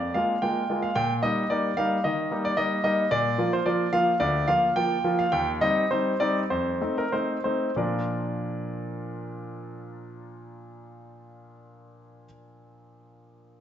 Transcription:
Already playing: F2 D5
0.14 G#3 A#3 F4 F5
0.42 G#3 A#3 F4 G5
0.70 G#3 A#3 F4
0.82 F5
0.96 A#2 G5
1.23 G3 A#3 D#4 D#5
1.50 G3 A#3 D#4 D5
1.77 G3 A#3 D#4 F5
2.04 D#3 D#5
2.31 G3 A#3 D#4
2.45 D5
2.57 G3 A#3 D#4 D#5
2.84 G3 A#3 D#4 D#5
3.11 A#2 D5
3.38 F3 A#3 F4
3.53 C5
3.66 F3 A#3 F4 D5
3.93 F3 A#3 F4 F5
4.20 D2 D5
4.48 F3 A#3 F4 F5
4.76 F3 A#3 F4 G5
5.04 F3 A#3 F4
5.19 F5
5.32 D#2 G5
5.61 G3 C4 D#4 D#5
5.91 G3 C4 D#4 C5
6.20 G3 C4 D#4 D5
6.50 F2 C5
6.81 A3 C4 D#4
6.98 A#4
7.12 A3 C4 D#4 C5
7.44 A3 C4 D#4 C5
7.76 A#2 F3 D4 F4 A#4 D5

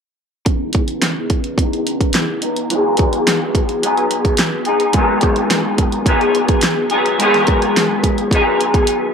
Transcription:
0.45 C#3 E3, kick, closed hi-hat
0.50 B3 D#4
0.73 kick, closed hi-hat
0.88 closed hi-hat
1.02 snare, closed hi-hat
1.30 kick, closed hi-hat
1.44 closed hi-hat
1.58 C#3 E3 B3, kick, closed hi-hat
1.62 D#4
1.73 closed hi-hat
1.87 closed hi-hat
2.01 kick, closed hi-hat
2.13 snare, closed hi-hat
2.42 E3 B3 D#4, closed hi-hat
2.56 closed hi-hat
2.70 E3 F#3 B3 D#4, closed hi-hat
2.75 G#4
2.97 kick, closed hi-hat
3.13 closed hi-hat
3.27 snare, closed hi-hat
3.55 kick, closed hi-hat
3.69 closed hi-hat
3.83 F#3 B3 D#4 G#4, closed hi-hat
3.97 closed hi-hat
4.11 closed hi-hat
4.25 kick, closed hi-hat
4.37 snare, closed hi-hat
4.65 D#4 G#4, closed hi-hat
4.70 B3
4.80 closed hi-hat
4.92 G#2 D#3 F#3, kick, closed hi-hat
4.97 B3 D#4 G#4
5.21 kick, closed hi-hat
5.36 closed hi-hat
5.51 snare, closed hi-hat
5.78 kick, closed hi-hat
5.92 closed hi-hat
6.06 F#3 B3 D#4 G#4, kick, closed hi-hat
6.21 closed hi-hat
6.35 closed hi-hat
6.48 kick, closed hi-hat
6.61 snare, closed hi-hat
6.90 B3 D#4 G#4, closed hi-hat
6.94 F#3
7.06 closed hi-hat
7.18 G#2 D#3 F#3 B3, closed hi-hat
7.22 D#4 G#4
7.34 snare, closed hi-hat
7.47 kick, closed hi-hat
7.62 closed hi-hat
7.77 snare, closed hi-hat
8.04 kick, closed hi-hat
8.18 closed hi-hat
8.31 F#3 B3 D#4, kick, closed hi-hat
8.36 G#4
8.61 closed hi-hat
8.74 kick, closed hi-hat
8.87 closed hi-hat

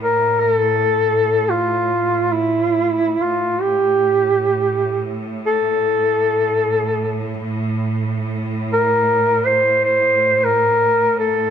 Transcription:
Already playing: A2
0.02 A#4
0.40 A#4
0.53 A4
1.50 F4
2.32 E4
3.22 A2 F4
3.61 G4
5.46 A4
8.73 A#4
9.46 C5
9.84 C5
10.44 A#4
11.19 A4

